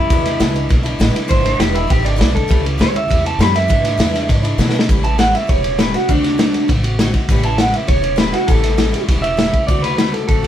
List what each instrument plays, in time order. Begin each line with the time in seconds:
Already playing: steel-string acoustic guitar C#4 E4, clean electric guitar E4
0.00 steel-string acoustic guitar G3
0.10 upright bass E2, steel-string acoustic guitar E2 B2 E3 G#3 D4 E4, kick, ride
0.25 steel-string acoustic guitar E3 G#3 D4 E4, snare, ride
0.40 upright bass C#2, steel-string acoustic guitar E2 B2 E3 G#3 D4 E4, snare, ride
0.54 steel-string acoustic guitar E3 G#3 D4 E4, ride
0.69 upright bass B1, steel-string acoustic guitar E3 G#3 D4 E4, kick, snare, ride
0.83 steel-string acoustic guitar E3 G#3 D4 E4, ride
0.99 upright bass A1, steel-string acoustic guitar E2 B2 E3 G#3 D4 E4, snare, ride
1.13 steel-string acoustic guitar E3 G#3 D4 E4, snare, ride
1.28 upright bass G#1, steel-string acoustic guitar E2 B2 E3 G#3 D4 E4, clean electric guitar C5, kick, ride
1.43 steel-string acoustic guitar E3 G#3 D4 E4, snare, ride
1.59 upright bass E1, steel-string acoustic guitar E2 B2 E3 G#3 D4 E4, clean electric guitar G4, snare, ride
1.72 steel-string acoustic guitar E3 G#3 D4 E4, clean electric guitar E4, ride
1.87 upright bass G#1, steel-string acoustic guitar E3 G#3 D4 E4, clean electric guitar G4, kick, snare, ride
2.02 steel-string acoustic guitar E3 G#3 D4 E4, clean electric guitar D5, ride
2.16 upright bass B1, steel-string acoustic guitar E2 B2 E3 G#3 D4 E4
2.21 snare, ride
2.32 steel-string acoustic guitar E3 G#3 D4 E4, clean electric guitar A4
2.36 kick, ride
2.48 upright bass C#2, steel-string acoustic guitar A2 E3 G3 C#4 E4, kick, ride
2.64 steel-string acoustic guitar G3 C#4 E4, ride
2.78 upright bass D2, steel-string acoustic guitar A2 E3 G3 C#4 E4, clean electric guitar C#5, snare, ride
2.93 steel-string acoustic guitar G3 C#4 E4, clean electric guitar E5, ride
3.08 upright bass E2, steel-string acoustic guitar E3 G3 C#4 E4, kick, snare, ride
3.24 steel-string acoustic guitar G3 C#4 E4, clean electric guitar A5, ride
3.39 upright bass F#2, steel-string acoustic guitar A2 E3 G3 C#4 E4, clean electric guitar B5, snare, ride
3.54 steel-string acoustic guitar G3 C#4 E4, clean electric guitar E5, snare, ride
3.68 steel-string acoustic guitar E2 B2 E3 G#3 D4 E4, upright bass G#2, kick, ride
3.83 steel-string acoustic guitar E3 G#3 D4 E4, snare, ride
3.98 steel-string acoustic guitar E2 B2 E3 G#3 D4 E4, upright bass E2, snare, ride
4.14 steel-string acoustic guitar E3 G#3 D4 E4, snare, ride
4.29 upright bass G#2, steel-string acoustic guitar E3 G#3 D4 E4, kick, snare, ride
4.43 steel-string acoustic guitar E3 G#3 D4 E4, ride
4.58 steel-string acoustic guitar E2 B2 E3 G#3 D4 E4, upright bass B2, snare
4.69 snare
4.73 steel-string acoustic guitar E3 G#3 D4 E4
4.79 snare
4.89 upright bass A1, steel-string acoustic guitar A2 E3 G3 C#4 E4, kick, ride
5.03 steel-string acoustic guitar G3 C#4 E4, clean electric guitar A5, ride
5.18 steel-string acoustic guitar A2 E3 G3 C#4 E4, clean electric guitar F#5, snare, ride
5.34 steel-string acoustic guitar G3 C#4 E4, clean electric guitar E5, snare, ride
5.47 upright bass E1, steel-string acoustic guitar E3 G3 C#4 E4, clean electric guitar C#5, kick, ride
5.63 steel-string acoustic guitar G3 C#4 E4, ride
5.79 steel-string acoustic guitar A2 E3 G3 C#4 E4, clean electric guitar B4, snare, ride
5.94 steel-string acoustic guitar G3 C#4 E4, clean electric guitar F#4, snare, ride
6.09 upright bass D2, steel-string acoustic guitar D3 A3 C4 F#4, clean electric guitar D4, kick, ride
6.22 steel-string acoustic guitar A3 C4 F#4, snare, ride
6.38 steel-string acoustic guitar D3 A3 C4 F#4, snare, ride
6.53 steel-string acoustic guitar A3 C4 F#4, snare, ride
6.68 upright bass A1, steel-string acoustic guitar D3 A3 C4 F#4, kick, snare, ride
6.83 steel-string acoustic guitar A3 C4 F#4, ride
6.99 steel-string acoustic guitar D3 A3 C4 F#4, snare, ride
7.13 steel-string acoustic guitar A3 C4 F#4, kick, snare, ride
7.29 upright bass A1, steel-string acoustic guitar A2 E3 G3 C#4 E4, kick, ride
7.43 steel-string acoustic guitar G3 C#4 E4, clean electric guitar A5, ride
7.58 steel-string acoustic guitar A2 E3 G3 C#4 E4, clean electric guitar F#5, snare, ride
7.73 steel-string acoustic guitar G3 C#4 E4, clean electric guitar E5, snare, ride
7.87 upright bass E1, steel-string acoustic guitar E3 G3 C#4 E4, clean electric guitar C#5, kick, snare, ride
8.01 steel-string acoustic guitar G3 C#4 E4, ride
8.16 steel-string acoustic guitar A2 E3 G3 C#4 E4, clean electric guitar B4, snare, ride
8.32 steel-string acoustic guitar G3 C#4 E4, clean electric guitar F#4, snare, ride
8.47 upright bass A1, steel-string acoustic guitar A2 E3 G3 C#4 E4, clean electric guitar A4, kick, ride
8.63 steel-string acoustic guitar G3 C#4 E4, snare, ride
8.78 steel-string acoustic guitar A2 E3 G3 C#4 E4, snare, ride
8.92 steel-string acoustic guitar G3 C#4 E4, snare, ride
9.08 upright bass E1, steel-string acoustic guitar E3 G3 C#4 E4, kick, snare, ride
9.22 steel-string acoustic guitar G3 C#4 E4, clean electric guitar E5, ride
9.37 steel-string acoustic guitar A2 E3 G3 C#4 E4, snare, ride
9.52 steel-string acoustic guitar G3 C#4 E4, kick, ride
9.67 upright bass D2, steel-string acoustic guitar D3 A3 C4 F#4, clean electric guitar D5, kick, ride
9.82 steel-string acoustic guitar A3 C4, clean electric guitar B4, snare, ride
9.97 steel-string acoustic guitar D3 A3 C4 F#4, clean electric guitar B4, snare, ride
10.12 steel-string acoustic guitar A3 C4 F#4, clean electric guitar A4, snare, ride
10.28 upright bass A1, steel-string acoustic guitar D3 A3 C4 F#4, clean electric guitar A4, kick, ride
10.43 steel-string acoustic guitar F#4